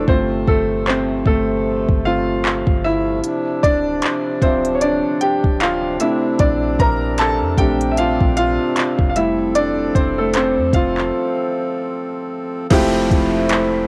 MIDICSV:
0, 0, Header, 1, 6, 480
1, 0, Start_track
1, 0, Key_signature, -1, "major"
1, 0, Tempo, 789474
1, 47, Time_signature, 4, 2, 24, 8
1, 8434, End_track
2, 0, Start_track
2, 0, Title_t, "Grand piano"
2, 0, Program_c, 0, 0
2, 0, Control_c, 0, 64, 127
2, 52, Note_on_c, 0, 72, 92
2, 53, Note_on_c, 0, 57, 53
2, 54, Control_c, 0, 64, 0
2, 57, Note_on_c, 0, 60, 71
2, 60, Note_on_c, 0, 65, 60
2, 148, Control_c, 0, 64, 127
2, 278, Note_off_c, 0, 60, 0
2, 291, Note_off_c, 0, 57, 0
2, 292, Note_on_c, 0, 69, 85
2, 296, Note_off_c, 0, 72, 0
2, 301, Note_on_c, 0, 57, 67
2, 388, Note_off_c, 0, 65, 0
2, 517, Note_off_c, 0, 57, 0
2, 533, Note_on_c, 0, 72, 85
2, 536, Note_off_c, 0, 69, 0
2, 541, Note_on_c, 0, 60, 68
2, 587, Note_off_c, 0, 72, 0
2, 593, Note_off_c, 0, 60, 0
2, 771, Note_on_c, 0, 69, 89
2, 780, Note_on_c, 0, 57, 71
2, 1224, Note_off_c, 0, 69, 0
2, 1229, Note_off_c, 0, 57, 0
2, 1248, Note_on_c, 0, 77, 91
2, 1251, Note_on_c, 0, 57, 48
2, 1252, Note_on_c, 0, 60, 43
2, 1256, Note_on_c, 0, 65, 73
2, 1465, Note_off_c, 0, 57, 0
2, 1466, Note_off_c, 0, 60, 0
2, 1708, Note_off_c, 0, 65, 0
2, 1730, Note_on_c, 0, 76, 94
2, 1739, Note_on_c, 0, 64, 75
2, 1742, Note_off_c, 0, 77, 0
2, 1976, Control_c, 0, 64, 0
2, 2079, Control_c, 0, 64, 127
2, 2188, Note_off_c, 0, 64, 0
2, 2208, Note_on_c, 0, 74, 109
2, 2217, Note_on_c, 0, 62, 75
2, 2223, Note_off_c, 0, 76, 0
2, 2668, Note_off_c, 0, 62, 0
2, 2688, Note_on_c, 0, 53, 55
2, 2689, Note_on_c, 0, 72, 89
2, 2692, Note_on_c, 0, 60, 69
2, 2695, Note_on_c, 0, 76, 59
2, 2702, Note_off_c, 0, 74, 0
2, 2883, Note_off_c, 0, 60, 0
2, 2888, Note_on_c, 0, 73, 76
2, 2898, Note_off_c, 0, 72, 0
2, 2925, Note_off_c, 0, 73, 0
2, 2928, Note_on_c, 0, 74, 91
2, 2937, Note_on_c, 0, 62, 69
2, 3155, Note_off_c, 0, 62, 0
2, 3167, Note_on_c, 0, 79, 86
2, 3174, Note_off_c, 0, 74, 0
2, 3178, Note_on_c, 0, 67, 72
2, 3396, Note_off_c, 0, 67, 0
2, 3409, Note_on_c, 0, 77, 93
2, 3414, Note_off_c, 0, 79, 0
2, 3418, Note_on_c, 0, 65, 70
2, 3623, Note_off_c, 0, 53, 0
2, 3627, Note_off_c, 0, 76, 0
2, 3631, Note_off_c, 0, 77, 0
2, 3636, Note_off_c, 0, 65, 0
2, 3651, Note_on_c, 0, 76, 86
2, 3652, Note_on_c, 0, 57, 54
2, 3654, Control_c, 0, 64, 0
2, 3655, Note_on_c, 0, 60, 51
2, 3658, Note_on_c, 0, 62, 60
2, 3659, Note_on_c, 0, 64, 72
2, 3750, Control_c, 0, 64, 127
2, 3877, Note_off_c, 0, 64, 0
2, 3890, Note_on_c, 0, 74, 95
2, 3891, Note_off_c, 0, 62, 0
2, 3896, Note_off_c, 0, 76, 0
2, 3901, Note_on_c, 0, 62, 78
2, 3983, Note_off_c, 0, 57, 0
2, 3985, Note_off_c, 0, 60, 0
2, 4117, Note_off_c, 0, 62, 0
2, 4132, Note_on_c, 0, 82, 101
2, 4135, Note_off_c, 0, 74, 0
2, 4142, Note_on_c, 0, 70, 78
2, 4353, Note_off_c, 0, 82, 0
2, 4358, Note_off_c, 0, 70, 0
2, 4370, Note_on_c, 0, 81, 104
2, 4381, Note_on_c, 0, 69, 77
2, 4423, Note_off_c, 0, 81, 0
2, 4433, Note_off_c, 0, 69, 0
2, 4609, Note_on_c, 0, 79, 101
2, 4613, Note_on_c, 0, 57, 50
2, 4615, Note_on_c, 0, 60, 44
2, 4618, Note_on_c, 0, 62, 57
2, 4621, Note_on_c, 0, 67, 77
2, 4804, Note_off_c, 0, 67, 0
2, 4812, Note_on_c, 0, 76, 74
2, 4819, Note_off_c, 0, 79, 0
2, 4826, Note_off_c, 0, 57, 0
2, 4827, Note_off_c, 0, 60, 0
2, 4829, Note_off_c, 0, 62, 0
2, 4847, Note_off_c, 0, 76, 0
2, 4852, Note_on_c, 0, 77, 94
2, 4861, Note_on_c, 0, 65, 72
2, 5078, Note_off_c, 0, 65, 0
2, 5078, Note_off_c, 0, 77, 0
2, 5087, Note_on_c, 0, 77, 107
2, 5098, Note_on_c, 0, 65, 77
2, 5512, Note_off_c, 0, 65, 0
2, 5520, Note_off_c, 0, 77, 0
2, 5529, Note_on_c, 0, 77, 70
2, 5566, Note_off_c, 0, 77, 0
2, 5569, Note_on_c, 0, 76, 87
2, 5571, Note_on_c, 0, 55, 55
2, 5575, Control_c, 0, 64, 0
2, 5575, Note_on_c, 0, 57, 49
2, 5578, Note_on_c, 0, 64, 70
2, 5676, Control_c, 0, 64, 127
2, 5797, Note_off_c, 0, 64, 0
2, 5807, Note_on_c, 0, 74, 101
2, 5815, Note_off_c, 0, 76, 0
2, 5819, Note_on_c, 0, 62, 78
2, 6030, Note_off_c, 0, 74, 0
2, 6036, Note_off_c, 0, 62, 0
2, 6049, Note_on_c, 0, 72, 87
2, 6060, Note_on_c, 0, 60, 67
2, 6183, Note_off_c, 0, 60, 0
2, 6191, Note_off_c, 0, 72, 0
2, 6191, Note_on_c, 0, 69, 81
2, 6192, Note_off_c, 0, 57, 0
2, 6202, Note_on_c, 0, 57, 61
2, 6221, Note_off_c, 0, 69, 0
2, 6232, Note_off_c, 0, 57, 0
2, 6264, Note_off_c, 0, 55, 0
2, 6291, Note_on_c, 0, 72, 84
2, 6303, Note_on_c, 0, 60, 68
2, 6519, Note_off_c, 0, 60, 0
2, 6531, Note_on_c, 0, 77, 93
2, 6536, Note_off_c, 0, 72, 0
2, 6542, Note_on_c, 0, 65, 70
2, 7224, Note_off_c, 0, 77, 0
2, 7230, Note_off_c, 0, 65, 0
2, 7724, Note_on_c, 0, 53, 117
2, 7729, Note_on_c, 0, 56, 88
2, 7732, Note_on_c, 0, 60, 108
2, 7735, Control_c, 0, 64, 0
2, 7736, Note_on_c, 0, 64, 113
2, 7740, Note_on_c, 0, 67, 124
2, 7769, Note_on_c, 0, 57, 108
2, 7774, Note_off_c, 0, 56, 0
2, 7840, Control_c, 0, 64, 127
2, 8373, Note_off_c, 0, 53, 0
2, 8377, Note_off_c, 0, 60, 0
2, 8379, Note_off_c, 0, 64, 0
2, 8381, Note_off_c, 0, 67, 0
2, 8395, Note_off_c, 0, 57, 0
2, 8434, End_track
3, 0, Start_track
3, 0, Title_t, "Harmonium"
3, 0, Program_c, 1, 20
3, 0, Note_on_c, 1, 57, 65
3, 49, Note_on_c, 1, 48, 71
3, 49, Note_on_c, 1, 53, 75
3, 1944, Note_off_c, 1, 57, 0
3, 1949, Note_off_c, 1, 53, 0
3, 1968, Note_on_c, 1, 53, 65
3, 1969, Note_on_c, 1, 62, 75
3, 3631, Note_off_c, 1, 53, 0
3, 3631, Note_off_c, 1, 62, 0
3, 3650, Note_on_c, 1, 60, 63
3, 3650, Note_on_c, 1, 62, 82
3, 5543, Note_off_c, 1, 48, 0
3, 5549, Note_off_c, 1, 62, 0
3, 5568, Note_on_c, 1, 53, 71
3, 5568, Note_on_c, 1, 69, 79
3, 7704, Note_off_c, 1, 60, 0
3, 7706, Note_off_c, 1, 53, 0
3, 7706, Note_off_c, 1, 69, 0
3, 7725, Note_on_c, 1, 53, 79
3, 7725, Note_on_c, 1, 57, 69
3, 7726, Note_on_c, 1, 64, 78
3, 8434, Note_off_c, 1, 53, 0
3, 8434, Note_off_c, 1, 57, 0
3, 8434, Note_off_c, 1, 64, 0
3, 8434, End_track
4, 0, Start_track
4, 0, Title_t, "808-style bass"
4, 0, Program_c, 2, 38
4, 49, Note_on_c, 2, 31, 114
4, 278, Note_off_c, 2, 31, 0
4, 290, Note_on_c, 2, 31, 101
4, 749, Note_off_c, 2, 31, 0
4, 765, Note_on_c, 2, 31, 95
4, 1130, Note_off_c, 2, 31, 0
4, 1146, Note_on_c, 2, 31, 100
4, 1607, Note_off_c, 2, 31, 0
4, 1623, Note_on_c, 2, 31, 98
4, 1952, Note_off_c, 2, 31, 0
4, 2210, Note_on_c, 2, 26, 98
4, 2439, Note_off_c, 2, 26, 0
4, 2686, Note_on_c, 2, 26, 97
4, 3050, Note_off_c, 2, 26, 0
4, 3308, Note_on_c, 2, 26, 93
4, 3634, Note_off_c, 2, 26, 0
4, 3888, Note_on_c, 2, 34, 117
4, 4118, Note_off_c, 2, 34, 0
4, 4131, Note_on_c, 2, 34, 102
4, 4506, Note_on_c, 2, 41, 96
4, 4515, Note_off_c, 2, 34, 0
4, 4602, Note_off_c, 2, 41, 0
4, 4606, Note_on_c, 2, 34, 97
4, 4971, Note_off_c, 2, 34, 0
4, 4989, Note_on_c, 2, 34, 98
4, 5218, Note_off_c, 2, 34, 0
4, 5465, Note_on_c, 2, 29, 95
4, 6023, Note_off_c, 2, 29, 0
4, 6050, Note_on_c, 2, 29, 104
4, 6428, Note_on_c, 2, 41, 92
4, 6437, Note_off_c, 2, 29, 0
4, 6523, Note_off_c, 2, 41, 0
4, 6526, Note_on_c, 2, 29, 95
4, 6757, Note_off_c, 2, 29, 0
4, 7727, Note_on_c, 2, 29, 120
4, 7957, Note_off_c, 2, 29, 0
4, 7969, Note_on_c, 2, 29, 101
4, 8434, Note_off_c, 2, 29, 0
4, 8434, End_track
5, 0, Start_track
5, 0, Title_t, "Downlifter"
5, 0, Program_c, 3, 103
5, 7727, Note_on_c, 3, 60, 89
5, 8434, Note_off_c, 3, 60, 0
5, 8434, End_track
6, 0, Start_track
6, 0, Title_t, "Drums"
6, 48, Note_on_c, 9, 36, 110
6, 108, Note_off_c, 9, 36, 0
6, 290, Note_on_c, 9, 36, 85
6, 351, Note_off_c, 9, 36, 0
6, 534, Note_on_c, 9, 39, 112
6, 595, Note_off_c, 9, 39, 0
6, 764, Note_on_c, 9, 36, 87
6, 825, Note_off_c, 9, 36, 0
6, 1147, Note_on_c, 9, 36, 80
6, 1208, Note_off_c, 9, 36, 0
6, 1493, Note_on_c, 9, 39, 118
6, 1554, Note_off_c, 9, 39, 0
6, 1623, Note_on_c, 9, 36, 85
6, 1684, Note_off_c, 9, 36, 0
6, 1968, Note_on_c, 9, 42, 61
6, 2029, Note_off_c, 9, 42, 0
6, 2210, Note_on_c, 9, 36, 86
6, 2213, Note_on_c, 9, 42, 59
6, 2271, Note_off_c, 9, 36, 0
6, 2274, Note_off_c, 9, 42, 0
6, 2444, Note_on_c, 9, 42, 66
6, 2455, Note_on_c, 9, 39, 112
6, 2505, Note_off_c, 9, 42, 0
6, 2516, Note_off_c, 9, 39, 0
6, 2685, Note_on_c, 9, 36, 86
6, 2688, Note_on_c, 9, 42, 54
6, 2746, Note_off_c, 9, 36, 0
6, 2748, Note_off_c, 9, 42, 0
6, 2826, Note_on_c, 9, 42, 54
6, 2887, Note_off_c, 9, 42, 0
6, 2926, Note_on_c, 9, 42, 64
6, 2986, Note_off_c, 9, 42, 0
6, 3167, Note_on_c, 9, 42, 54
6, 3228, Note_off_c, 9, 42, 0
6, 3308, Note_on_c, 9, 36, 93
6, 3368, Note_off_c, 9, 36, 0
6, 3407, Note_on_c, 9, 42, 56
6, 3415, Note_on_c, 9, 39, 112
6, 3468, Note_off_c, 9, 42, 0
6, 3476, Note_off_c, 9, 39, 0
6, 3647, Note_on_c, 9, 42, 67
6, 3708, Note_off_c, 9, 42, 0
6, 3886, Note_on_c, 9, 42, 61
6, 3888, Note_on_c, 9, 36, 117
6, 3946, Note_off_c, 9, 42, 0
6, 3949, Note_off_c, 9, 36, 0
6, 4130, Note_on_c, 9, 36, 88
6, 4133, Note_on_c, 9, 42, 61
6, 4191, Note_off_c, 9, 36, 0
6, 4194, Note_off_c, 9, 42, 0
6, 4365, Note_on_c, 9, 42, 63
6, 4376, Note_on_c, 9, 39, 116
6, 4425, Note_off_c, 9, 42, 0
6, 4437, Note_off_c, 9, 39, 0
6, 4606, Note_on_c, 9, 36, 81
6, 4608, Note_on_c, 9, 42, 59
6, 4666, Note_off_c, 9, 36, 0
6, 4669, Note_off_c, 9, 42, 0
6, 4747, Note_on_c, 9, 42, 54
6, 4808, Note_off_c, 9, 42, 0
6, 4847, Note_on_c, 9, 42, 64
6, 4908, Note_off_c, 9, 42, 0
6, 4988, Note_on_c, 9, 36, 85
6, 5049, Note_off_c, 9, 36, 0
6, 5087, Note_on_c, 9, 42, 59
6, 5148, Note_off_c, 9, 42, 0
6, 5326, Note_on_c, 9, 42, 58
6, 5334, Note_on_c, 9, 39, 113
6, 5387, Note_off_c, 9, 42, 0
6, 5395, Note_off_c, 9, 39, 0
6, 5463, Note_on_c, 9, 36, 85
6, 5524, Note_off_c, 9, 36, 0
6, 5568, Note_on_c, 9, 42, 68
6, 5629, Note_off_c, 9, 42, 0
6, 5807, Note_on_c, 9, 42, 59
6, 5868, Note_off_c, 9, 42, 0
6, 6050, Note_on_c, 9, 36, 82
6, 6053, Note_on_c, 9, 42, 59
6, 6111, Note_off_c, 9, 36, 0
6, 6114, Note_off_c, 9, 42, 0
6, 6284, Note_on_c, 9, 42, 65
6, 6295, Note_on_c, 9, 39, 115
6, 6345, Note_off_c, 9, 42, 0
6, 6356, Note_off_c, 9, 39, 0
6, 6525, Note_on_c, 9, 36, 88
6, 6527, Note_on_c, 9, 42, 66
6, 6585, Note_off_c, 9, 36, 0
6, 6588, Note_off_c, 9, 42, 0
6, 6674, Note_on_c, 9, 39, 59
6, 6735, Note_off_c, 9, 39, 0
6, 7725, Note_on_c, 9, 42, 62
6, 7726, Note_on_c, 9, 49, 100
6, 7727, Note_on_c, 9, 36, 123
6, 7786, Note_off_c, 9, 42, 0
6, 7787, Note_off_c, 9, 49, 0
6, 7788, Note_off_c, 9, 36, 0
6, 7970, Note_on_c, 9, 36, 88
6, 7973, Note_on_c, 9, 42, 58
6, 8031, Note_off_c, 9, 36, 0
6, 8034, Note_off_c, 9, 42, 0
6, 8204, Note_on_c, 9, 42, 72
6, 8215, Note_on_c, 9, 39, 124
6, 8265, Note_off_c, 9, 42, 0
6, 8276, Note_off_c, 9, 39, 0
6, 8434, End_track
0, 0, End_of_file